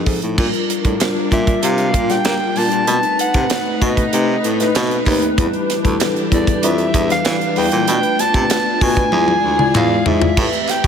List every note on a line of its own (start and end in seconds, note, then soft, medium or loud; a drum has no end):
0.00 0.40 F3 medium
0.00 0.40 C4 medium
0.00 0.39 D#4 medium
0.00 0.40 A4 medium
0.06 0.18 G#2 medium
0.06 kick medium
0.06 open hi-hat medium
0.22 0.34 A2 medium
0.22 closed hi-hat soft
0.38 0.50 A#2 loud
0.38 0.71 G3 medium
0.38 2.85 G3 medium
0.38 2.85 A#3 medium
0.38 0.71 D4 medium
0.38 2.85 D4 medium
0.38 0.71 F4 medium
0.38 0.72 A#4 medium
0.38 kick loud
0.38 crash medium
0.54 closed hi-hat soft
0.70 closed hi-hat medium
0.84 0.96 A2 medium
0.84 1.18 G3 medium
0.84 1.18 D4 medium
0.84 1.18 F4 medium
0.84 1.18 A#4 medium
0.84 kick medium
0.84 closed hi-hat soft
1.00 snare loud
1.00 clap medium
1.00 closed hi-hat loud
1.31 1.55 A#2 medium
1.31 1.53 G3 medium
1.31 1.54 D4 medium
1.31 1.54 F4 medium
1.31 1.54 A#4 medium
1.31 1.66 E5 medium
1.31 kick medium
1.31 closed hi-hat medium
1.47 kick medium
1.47 closed hi-hat soft
1.63 1.95 C3 loud
1.63 1.96 G3 medium
1.63 1.96 D4 medium
1.63 1.96 F4 medium
1.63 1.97 A#4 medium
1.63 2.12 F5 medium
1.63 closed hi-hat loud
1.78 closed hi-hat soft
1.94 2.17 A#2 loud
1.94 kick medium
1.94 closed hi-hat medium
2.10 2.43 G3 medium
2.10 2.43 D4 medium
2.10 2.43 F4 medium
2.10 2.43 G4 medium
2.10 2.59 G5 medium
2.10 snare soft
2.10 closed hi-hat medium
2.25 2.37 A#3 medium
2.25 snare loud
2.25 clap medium
2.25 closed hi-hat medium
2.56 2.68 A#2 medium
2.56 2.79 G3 medium
2.56 2.79 D4 medium
2.56 2.79 F4 medium
2.56 2.79 A#4 medium
2.56 3.20 A5 loud
2.56 open hi-hat medium
2.72 2.84 A#2 medium
2.72 closed hi-hat soft
2.87 2.99 B2 loud
2.87 3.21 A3 medium
2.87 5.35 A3 medium
2.87 3.21 C4 medium
2.87 5.35 D#4 medium
2.87 3.21 D#4 medium
2.87 5.35 B4 medium
2.87 3.21 B4 medium
2.87 closed hi-hat medium
3.03 closed hi-hat soft
3.19 3.85 F#5 medium
3.19 closed hi-hat medium
3.34 3.46 C3 medium
3.34 3.68 A3 medium
3.34 3.68 C4 medium
3.34 3.68 D#4 medium
3.34 3.68 B4 medium
3.34 kick medium
3.34 closed hi-hat soft
3.50 snare loud
3.50 clap medium
3.50 closed hi-hat loud
3.81 4.05 B2 medium
3.81 4.03 A3 medium
3.81 4.04 C4 medium
3.81 4.04 D#4 medium
3.81 4.04 B4 medium
3.81 4.76 D#5 medium
3.81 kick medium
3.81 closed hi-hat medium
3.97 kick medium
3.97 closed hi-hat soft
4.12 4.36 C3 medium
4.12 4.46 A3 medium
4.12 4.46 C4 medium
4.12 4.46 D#4 medium
4.12 4.46 B4 medium
4.12 closed hi-hat loud
4.44 4.67 A2 medium
4.44 closed hi-hat medium
4.59 4.93 A3 medium
4.59 4.93 C4 medium
4.59 4.93 D#4 medium
4.59 4.93 B4 loud
4.59 snare soft
4.59 closed hi-hat medium
4.75 4.99 B2 medium
4.75 snare loud
4.75 clap medium
4.75 closed hi-hat medium
4.91 closed hi-hat soft
5.06 5.30 D#2 medium
5.06 5.29 A3 medium
5.06 5.29 C4 medium
5.06 5.29 D#4 medium
5.06 5.29 B4 loud
5.06 kick medium
5.06 open hi-hat medium
5.22 closed hi-hat soft
5.38 5.49 E2 loud
5.38 7.85 E3 medium
5.38 5.71 G3 medium
5.38 5.71 D4 medium
5.38 10.34 D4 medium
5.38 5.71 E4 medium
5.38 7.85 G4 medium
5.38 5.71 B4 loud
5.38 kick loud
5.38 closed hi-hat medium
5.53 closed hi-hat soft
5.70 snare soft
5.70 closed hi-hat medium
5.84 5.96 D2 medium
5.84 6.17 G3 medium
5.84 6.18 D4 medium
5.84 6.18 E4 medium
5.84 6.18 A4 loud
5.84 kick medium
5.84 closed hi-hat soft
6.00 snare loud
6.00 clap medium
6.00 closed hi-hat loud
6.16 closed hi-hat soft
6.31 6.55 E2 medium
6.31 6.53 G3 medium
6.31 6.54 D4 medium
6.31 6.54 E4 medium
6.31 6.54 B4 medium
6.31 6.66 D5 medium
6.31 kick medium
6.31 closed hi-hat medium
6.47 kick medium
6.47 closed hi-hat soft
6.63 6.86 F2 loud
6.63 6.96 G3 medium
6.63 6.96 D4 medium
6.63 6.96 E4 medium
6.63 6.96 B4 medium
6.63 7.10 E5 medium
6.63 closed hi-hat loud
6.78 closed hi-hat soft
6.94 7.17 E2 medium
6.94 kick medium
6.94 closed hi-hat medium
7.09 7.43 E3 medium
7.09 7.42 G3 medium
7.09 7.43 D4 medium
7.09 7.43 B4 medium
7.09 7.59 F5 loud
7.09 snare soft
7.09 closed hi-hat medium
7.25 7.37 E3 loud
7.25 snare loud
7.25 clap medium
7.25 closed hi-hat medium
7.41 closed hi-hat soft
7.56 7.68 E2 medium
7.56 7.78 G3 medium
7.56 7.79 D4 medium
7.56 7.79 E4 medium
7.56 7.79 B4 medium
7.56 8.22 G5 loud
7.56 open hi-hat medium
7.72 7.84 A#2 medium
7.72 closed hi-hat medium
7.87 8.00 B2 loud
7.87 8.21 A3 medium
7.87 9.11 A3 medium
7.87 9.11 B3 medium
7.87 8.21 D4 medium
7.87 8.21 F4 medium
7.87 8.21 B4 medium
7.87 closed hi-hat medium
8.03 closed hi-hat soft
8.19 8.84 A5 loud
8.19 snare soft
8.19 closed hi-hat medium
8.34 8.46 C3 medium
8.34 8.67 A3 medium
8.34 8.68 D4 medium
8.34 8.68 F4 medium
8.34 8.68 B4 medium
8.34 kick medium
8.34 closed hi-hat soft
8.50 snare loud
8.50 clap medium
8.50 closed hi-hat loud
8.81 9.05 B2 medium
8.81 9.03 A3 medium
8.81 9.04 D4 medium
8.81 9.04 F4 medium
8.81 9.04 B4 medium
8.81 9.75 G#5 loud
8.81 kick medium
8.81 open hi-hat medium
8.97 kick medium
8.97 closed hi-hat soft
9.12 9.36 E2 loud
9.12 10.36 E3 medium
9.12 10.36 F3 medium
9.12 9.46 G#3 medium
9.12 9.46 E4 medium
9.12 9.46 F4 medium
9.12 10.36 G#4 medium
9.12 9.46 D5 medium
9.12 high tom medium
9.28 high tom medium
9.44 9.67 D2 medium
9.59 9.93 G#3 medium
9.59 9.93 E4 medium
9.59 9.93 F4 medium
9.59 9.93 D5 loud
9.59 mid tom medium
9.75 9.98 E2 medium
9.75 10.09 F5 medium
9.75 clap medium
9.75 mid tom medium
10.06 10.29 G#2 medium
10.06 10.28 G#3 medium
10.06 10.29 E4 medium
10.06 10.29 F4 medium
10.06 10.29 D5 loud
10.06 10.71 E5 medium
10.06 floor tom loud
10.22 floor tom medium
10.37 10.49 A2 loud
10.37 10.87 A3 medium
10.37 10.71 A3 medium
10.37 10.71 C4 medium
10.37 10.87 G4 medium
10.37 10.71 G4 medium
10.37 10.71 B4 medium
10.37 kick loud
10.37 crash loud
10.53 closed hi-hat soft
10.68 10.87 G5 medium
10.68 snare soft
10.68 clap medium
10.68 closed hi-hat medium
10.84 10.87 B2 medium
10.84 10.87 A3 medium
10.84 kick medium
10.84 closed hi-hat soft